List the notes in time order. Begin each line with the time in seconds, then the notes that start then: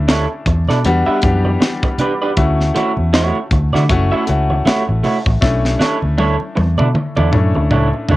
Already playing: D2 A3 C#4 D4 E4
0.08 D4 E4 A4 C#5, snare, closed hi-hat, muted conga
0.46 E2, muted clean electric guitar stroke, kick, closed hi-hat
0.67 B2 D4 E4 A4 D5, snare, low conga
0.84 E2 G3 B3 D4 F#4, muted clean electric guitar stroke, closed hi-hat, high conga
1.06 D4 G4 B4 E5, muted fingered electric bass stroke, muted conga
1.22 F#2 E3 B3 D4 G4, muted clean electric guitar stroke, kick, closed hi-hat
1.44 muted clean electric guitar stroke, high conga
1.60 muted clean electric guitar stroke, snare, closed hi-hat, high conga
1.83 muted clean electric guitar stroke, kick, muted conga
1.98 D4 G4 B4 D5, closed hi-hat, low conga
2.21 D4 G4 B4 D5
2.37 D2 A3 C#4 E4 F#4, kick, closed hi-hat, muted conga
2.61 snare, muted conga
2.75 A3 E4 F#4 C#5, closed hi-hat, high conga
2.97 E2, high conga
3.13 A3 E4 F#4 C#5, snare, closed hi-hat, muted conga
3.35 muted conga
3.51 D2, muted clean electric guitar stroke, kick, closed hi-hat
3.73 D3 A3 E4 F#4 D5, snare, low conga
3.89 F#1 A3 C#4 E4 F#4, muted clean electric guitar stroke, kick, closed hi-hat, muted conga, high conga
4.11 A3 E4 F#4 E5, muted fingered electric bass stroke, muted conga
4.27 C#2 A3 C#4 E4 F#4, muted clean electric guitar stroke, closed hi-hat
4.50 muted clean electric guitar stroke, high conga
4.66 A3 E4 F#4 C#5, muted fingered electric bass stroke, snare, closed hi-hat, muted conga, high conga
4.88 A1, muted clean electric guitar stroke
5.04 A3 E4 F#4 C#5, open hi-hat, low conga
5.26 A1, muted clean electric guitar stroke, kick
5.41 B1 A3 C#4 D4 E4, kick, snare
5.65 snare, muted conga
5.79 D4 E4 A4 C#5, snare, high conga
6.02 D2, high conga
6.18 D4 E4 A4 C#5, high tom
6.40 muted conga
6.55 E2, muted clean electric guitar stroke, high tom
6.78 B2 D4 E4 A4 D5, mid tom, low conga
6.94 muted clean electric guitar stroke, mid tom, muted conga, high conga
7.15 E2 D4 E4 A4 D5, mid tom, muted conga
7.31 F#2 A3 C#4 D4 E4, muted clean electric guitar stroke, mid tom
7.54 D2, muted clean electric guitar stroke, high conga
7.70 C#2 D4 E4 A4 C#5, mid tom, high conga
7.93 muted clean electric guitar stroke, muted conga
8.09 D2 D4 E4 A4 C#5, floor tom, low conga